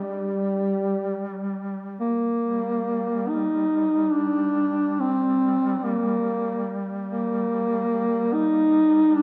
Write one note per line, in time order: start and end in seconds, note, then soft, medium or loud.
0.00 1.54 G3 medium
0.00 2.25 G3 soft
2.00 3.30 A#3 medium
2.42 9.22 G3 soft
3.29 4.14 D#4 medium
4.12 5.01 D4 medium
5.00 5.77 C4 medium
5.77 5.85 C4 medium
5.84 6.83 A#3 medium
7.09 8.35 A#3 medium
8.33 9.17 D#4 medium
9.15 9.22 D4 loud